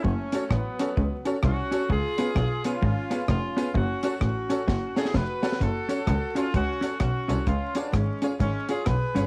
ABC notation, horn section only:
X:1
M:4/4
L:1/8
Q:"Swing" 1/4=129
K:F#m
V:1 name="Horn section"
[A,C]2 [F,B,]3 z [CF]2 | [^EG]3 [CE]3 [CE]2 | [CF]2 [CF]3 [EG] [FB]2 | [FA]3 [C^E] [CF]2 [CF]2 |
[C^E] [B,D] [G,C]2 [G,C] [EG] [GB]2 |]